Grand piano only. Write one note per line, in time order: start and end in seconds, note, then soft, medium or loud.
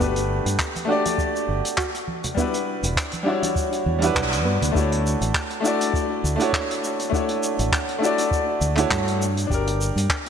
0.00 0.83 A3 medium
0.00 0.85 D4 medium
0.00 0.86 F#4 medium
0.00 0.86 G4 medium
0.00 0.87 B4 medium
0.85 2.32 A3 medium
0.85 2.33 D4 medium
0.85 2.34 F#4 medium
0.90 2.35 G4 medium
0.90 2.36 D5 loud
2.34 3.21 G3 medium
2.34 3.23 D4 medium
2.34 3.23 E4 medium
2.40 3.24 F#4 medium
2.40 3.25 B4 medium
3.23 3.97 G3 medium
3.23 3.98 D4 medium
3.23 3.99 E4 medium
3.28 4.00 F#4 medium
3.28 4.00 C#5 medium
3.98 4.70 G3 medium
3.98 4.71 D4 medium
3.98 4.72 E4 medium
4.04 4.73 F#4 medium
4.04 4.74 B4 medium
4.72 5.59 A3 medium
4.72 5.60 D4 medium
4.72 5.61 E4 medium
4.77 5.62 F#4 medium
4.77 5.63 C#5 medium
5.60 6.34 A3 medium
5.60 6.35 D4 medium
5.60 6.36 E4 medium
5.66 6.37 F#4 medium
5.66 6.38 D5 loud
6.36 7.07 A3 medium
6.36 7.08 D4 medium
6.36 7.09 E4 medium
6.41 7.10 F#4 medium
6.41 7.11 C#5 loud
7.10 7.97 A3 medium
7.10 7.98 D4 medium
7.10 7.99 E4 medium
7.15 7.99 F#4 medium
7.15 8.00 C#5 medium
7.98 8.72 A3 medium
7.98 8.73 D4 medium
7.98 8.74 E4 medium
8.04 8.75 F#4 medium
8.04 8.76 D5 loud
8.76 9.18 A3 medium
8.76 9.18 D4 medium
8.76 9.19 E4 medium
8.76 9.20 F#4 medium
8.76 9.20 C#5 loud
9.47 10.29 D4 medium
9.47 10.29 G4 medium
9.54 10.29 A#4 medium